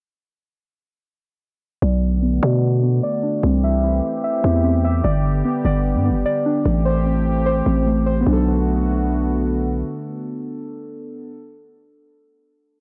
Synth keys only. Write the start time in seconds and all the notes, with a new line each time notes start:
1.82 D5
2.23 B3
2.43 D5
2.83 B3
3.03 D5
3.23 D4
3.43 C4
3.64 E5
3.84 E4
4.24 E5
4.44 E4
4.64 C4
4.84 E5
5.04 D5
5.45 B3
5.65 D5
6.05 B3
6.26 D5
6.46 D4
6.66 A3
6.85 C5
7.06 C4
7.46 C5
7.66 C4
7.86 A3
8.06 C5
8.21 B3
8.27 D4
8.33 A4